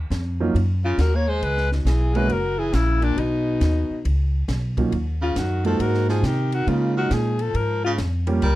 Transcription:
0.10 upright bass F2, snare, hi-hat pedal, ride
0.40 grand piano F#3 A#3 C#4 D#4 F4
0.54 upright bass F#2, ride
0.85 baritone saxophone C#3, alto saxophone F4
0.98 upright bass D#2, baritone saxophone F#3, alto saxophone A#4, snare, hi-hat pedal, ride
1.15 baritone saxophone A#3, alto saxophone C#5
1.28 baritone saxophone G#3, alto saxophone C5
1.42 upright bass C#2, baritone saxophone G#3, alto saxophone B4, ride
1.57 snare
1.72 baritone saxophone B2, alto saxophone D#4, snare
1.85 upright bass B1, baritone saxophone E3, alto saxophone G#4, snare, hi-hat pedal, ride
2.15 baritone saxophone G#3, grand piano G#3 A#3 C#4 E4 F#4, alto saxophone B4, ride
2.29 upright bass F#1, baritone saxophone F#3, alto saxophone A#4, ride
2.58 baritone saxophone E3, alto saxophone G#4
2.73 upright bass A#1, baritone saxophone C#3, alto saxophone E4, snare, hi-hat pedal, ride
3.01 baritone saxophone A#2, alto saxophone D4, ride
3.16 upright bass B1, baritone saxophone B2, alto saxophone D#4, ride
3.61 upright bass D#2, snare, hi-hat pedal, ride
3.90 muted upright bass stroke
4.05 upright bass C#2, ride
4.48 upright bass B1, snare, hi-hat pedal, ride
4.77 grand piano F#3 A#3 C#4 D#4 F4, kick, ride
4.92 upright bass D#2, ride
5.21 baritone saxophone C#3, alto saxophone F4
5.36 upright bass F#2, baritone saxophone D#3, alto saxophone F#4, snare, hi-hat pedal, ride
5.65 baritone saxophone F3, grand piano G#3 A#3 C4 D#4 F#4, alto saxophone A4, ride
5.79 upright bass G#2, baritone saxophone F#3, alto saxophone A#4, ride
5.94 snare
6.09 baritone saxophone F3, alto saxophone G#4, snare
6.23 upright bass C3, baritone saxophone D#3, alto saxophone G4, snare, hi-hat pedal, ride
6.52 baritone saxophone D#3, alto saxophone F#4, ride
6.67 upright bass C#3, baritone saxophone C#3, grand piano G#3 A#3 C#4 D#4 F4, alto saxophone F4, ride
6.97 baritone saxophone D#3, alto saxophone F#4
7.11 upright bass A#2, baritone saxophone F3, alto saxophone G#4, snare, hi-hat pedal, ride
7.39 baritone saxophone F3, alto saxophone A4, ride
7.54 upright bass G#2, baritone saxophone F3, alto saxophone A#4, ride
7.84 baritone saxophone C#3, alto saxophone F4
7.98 upright bass F2, snare, hi-hat pedal, ride
8.27 grand piano G3 A#3 C#4 F4 G4, ride
8.42 upright bass C#2, baritone saxophone G3, alto saxophone A#4, ride

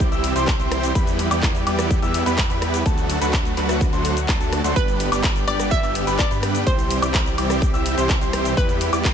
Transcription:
Already playing: analog synth pad E3 G3 C4 G4
0.00 kick, closed hi-hat, shaker
0.12 detuned saw bass C2, supersaw synth G3 C4 E4 G4 E5, grand piano E6, closed hi-hat, shaker
0.24 open hi-hat
0.36 detuned saw bass C2, supersaw synth G3 C4 E4 G4 C5, grand piano C6, closed hi-hat, shaker
0.48 kick, clap, closed hi-hat, shaker
0.60 detuned saw bass C2, supersaw synth G3 C4 E4 G4 C5, grand piano C6, closed hi-hat, shaker
0.72 cross-stick, open hi-hat
0.83 closed hi-hat, shaker
0.95 detuned saw bass E2, analog synth pad E3 G3 B3, supersaw synth G3 B3 E4 G4 B4, grand piano B5, kick, closed hi-hat, shaker
1.07 closed hi-hat, shaker
1.19 open hi-hat
1.31 detuned saw bass E2, supersaw synth G3 B3 E4 G4 D5, grand piano D6, closed hi-hat, shaker
1.43 kick, clap, closed hi-hat, shaker
1.55 closed hi-hat, shaker
1.67 detuned saw bass E2, supersaw synth G3 B3 E4 G4 D5, grand piano D6, open hi-hat
1.79 cross-stick, closed hi-hat, shaker
1.91 kick, closed hi-hat, shaker
2.02 detuned saw bass E2, supersaw synth G3 B3 E4 G4 E5, grand piano E6, closed hi-hat, shaker
2.14 open hi-hat
2.26 detuned saw bass E2, supersaw synth G3 B3 E4 G4 B4, grand piano B5, closed hi-hat, shaker
2.38 kick, clap, closed hi-hat, shaker
2.50 detuned saw bass E2, supersaw synth G3 B3 E4 G4 B4, grand piano B5, closed hi-hat, shaker
2.62 cross-stick, open hi-hat
2.74 closed hi-hat, shaker
2.86 detuned saw bass D2, analog synth pad D3 F#3 A3 F#4, supersaw synth F#3 A3 D4 F#4 A4, grand piano A5, kick, closed hi-hat, shaker
2.98 closed hi-hat, shaker
3.10 open hi-hat
3.21 detuned saw bass D2, supersaw synth F#3 A3 D4 F#4 B4, grand piano B5, closed hi-hat, shaker
3.33 kick, clap, closed hi-hat, shaker
3.45 closed hi-hat, shaker
3.57 detuned saw bass D2, supersaw synth F#3 A3 D4 F#4 B4, grand piano B5, clap, open hi-hat
3.69 cross-stick, closed hi-hat, shaker
3.81 kick, closed hi-hat, shaker
3.93 detuned saw bass D2, supersaw synth F#3 A3 D4 F#4 C5, grand piano C6, closed hi-hat, shaker
4.05 open hi-hat
4.17 closed hi-hat, shaker
4.28 detuned saw bass D2, supersaw synth F#3 A3 D4 F#4 A4, grand piano A5, kick, clap, closed hi-hat, shaker
4.40 detuned saw bass D2, supersaw synth F#3 A3 D4 F#4 A4, grand piano A5, closed hi-hat, shaker
4.53 cross-stick, open hi-hat
4.64 detuned saw bass D2, supersaw synth F#3 A3 D4 F#4 C5, grand piano C6, closed hi-hat, shaker
4.76 detuned saw bass G1, supersaw synth G3 B3 D4 G4 B4, analog synth pad G3 B3 G4, synth pluck B4, grand piano B5, kick, closed hi-hat, shaker
4.88 closed hi-hat, shaker
5.00 open hi-hat
5.12 detuned saw bass G1, supersaw synth G3 B3 D4 G4 D5, grand piano D6, closed hi-hat, shaker
5.24 kick, clap, closed hi-hat, shaker
5.36 closed hi-hat, shaker
5.47 detuned saw bass G1, supersaw synth G3 B3 D4 G4 D5, synth pluck D5, grand piano D6, open hi-hat
5.60 cross-stick, closed hi-hat, shaker
5.71 synth pluck E5, kick, closed hi-hat, shaker
5.83 detuned saw bass G1, supersaw synth G3 B3 D4 G4 E5, grand piano E6, closed hi-hat, shaker
5.95 open hi-hat
6.07 detuned saw bass G1, supersaw synth G3 B3 D4 G4 B4, grand piano B5, closed hi-hat, shaker
6.19 synth pluck D5, kick, clap, closed hi-hat, shaker
6.31 detuned saw bass G2, supersaw synth G3 B3 D4 G4 B4, grand piano B5, closed hi-hat, shaker
6.43 cross-stick, open hi-hat
6.55 closed hi-hat, shaker
6.67 detuned saw bass C2, analog synth pad E3 C4, supersaw synth G3 C4 E4 G4 C5, synth pluck C5, grand piano C6, kick, closed hi-hat, shaker
6.79 closed hi-hat, shaker
6.91 open hi-hat
7.02 detuned saw bass C2, supersaw synth G3 C4 E4 G4 D5, grand piano D6, closed hi-hat, shaker
7.14 kick, clap, closed hi-hat, shaker
7.26 closed hi-hat, shaker
7.38 detuned saw bass C2, supersaw synth G3 C4 E4 G4 D5, grand piano D6, open hi-hat
7.50 cross-stick, closed hi-hat, shaker
7.62 kick, closed hi-hat, shaker
7.74 detuned saw bass C2, supersaw synth G3 C4 E4 G4 E5, grand piano E6, closed hi-hat, shaker
7.86 open hi-hat
7.98 detuned saw bass C2, supersaw synth G3 C4 E4 G4 C5, grand piano C6, closed hi-hat, shaker
8.09 kick, clap, closed hi-hat, shaker
8.21 detuned saw bass C2, supersaw synth G3 C4 E4 G4 C5, grand piano C6, closed hi-hat, shaker
8.33 cross-stick, open hi-hat
8.45 closed hi-hat, shaker
8.57 detuned saw bass E2, supersaw synth G3 B3 E4 G4 B4, analog synth pad B3, synth pluck B4, grand piano B5, kick, closed hi-hat, shaker
8.69 closed hi-hat, shaker
8.81 open hi-hat
8.93 detuned saw bass E2, supersaw synth G3 B3 E4 G4 D5, grand piano D6, closed hi-hat, shaker
9.05 kick, clap, closed hi-hat, shaker

